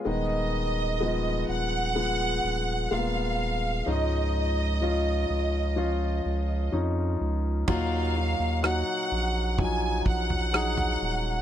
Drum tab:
CC |----------------|----------------|x---------------|
SD |----------------|----------------|----r-------r---|
FT |----------------|----------------|o-------o--o-o--|
BD |----------------|----------------|o-------o-o-----|